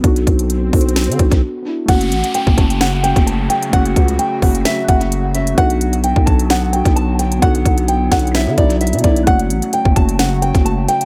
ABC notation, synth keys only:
X:1
M:4/4
L:1/16
Q:1/4=130
K:F#phr
V:1 name="Synth keys"
[B,DF]4 z2 [B,DF]3 z [B,DF]3 z [B,DE]2 | [A,CF]4 z2 [A,CF]3 z [A,CF]4 z2 | [A,CF]4 z2 [A,CF]3 z [A,CF]3 z [A,CF]2 | [B,DF]4 z2 [B,DA]3 z [B,DF]4 z2 |
[B,DF]4 z2 [B,DF]3 z [B,DF]3 z [B,DE]2 | [A,CF]4 z2 [A,CF]3 z [A,CF]4 z2 |]